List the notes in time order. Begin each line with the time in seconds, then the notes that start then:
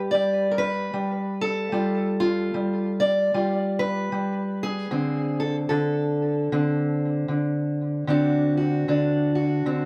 Already playing: G3 G4
0.11 G3 D5
0.51 A#4
0.58 B4
0.94 G3
1.41 A4
1.72 G3 F4
2.20 F4
2.54 G3
3.00 D5
3.34 G3 F4
3.79 B4
4.12 G3
4.63 G#4
4.91 D3 C4
5.40 A4
5.69 D3 A4
6.52 D3 C4
7.28 D3
8.07 D3 C4 D4 F#4
8.57 F#4
8.88 D3 D4
9.35 F#4
9.66 D3 C4